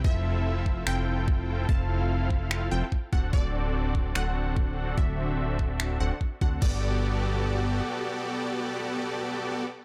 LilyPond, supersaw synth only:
\new Staff \with { instrumentName = "Supersaw synth" } { \time 4/4 \key g \major \tempo 4 = 146 <c' e' f' a' e''>2 <c' e' f' a' g''>2 | <c' e' f' a' f''>2~ <c' e' f' a' f''>8 <c' e' f' a' g''>8 r8 <c' d' fis' a' fis''>8 | <c' d' fis' a' d''>2 <c' d' fis' a' fis''>2 | <c' d' fis'>2~ <c' d' fis'>8 <c' d' fis' a' fis''>8 r8 <c' d' fis' a' fis''>8 |
<b fis' g' a' d''>1~ | <b fis' g' a' d''>1 | }